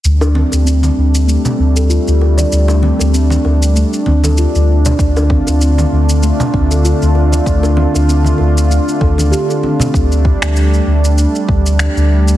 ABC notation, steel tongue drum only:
X:1
M:4/4
L:1/16
Q:"Swing 16ths" 1/4=97
K:Dm
V:1 name="Steel tongue drum"
z D C2 C4 A, z C A F3 d- | d D C2 C4 A, z C A F3 d | z D C2 C4 A, z C A F3 d- | d D C2 C4 A, z A D G A C C |
z16 |]